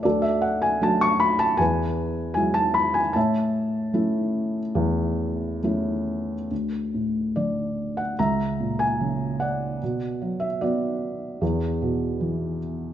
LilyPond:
<<
  \new Staff \with { instrumentName = "Felt piano" } { \time 4/4 \key a \major \tempo 4 = 75 << { d''16 e''16 fis''16 gis''16 a''16 cis'''16 b''16 a''16 gis''4 gis''16 a''16 b''16 gis''16 | a''2. r4 | r4 d''8. fis''16 ais''8. gis''8. fis''8~ | fis''8. e''16 d''2~ d''8 r8 | } \\ { <fis' a'>2 b'2 | <cis'' e''>2. r4 | r2 e''4. d''8~ | d''4 fis'2~ fis'8 r8 | } >> }
  \new Staff \with { instrumentName = "Felt piano" } { \clef bass \time 4/4 \key a \major d,4 <fis a d'>4 e,4 <fis gis e'>4 | a,4 <a cis' e'>4 e,4 <a cis' e'>4 | d,8 a,8 d4 cis,8 ais,8 cis4 | b,8 fis8 b4 e,8 b,8 e4 | }
>>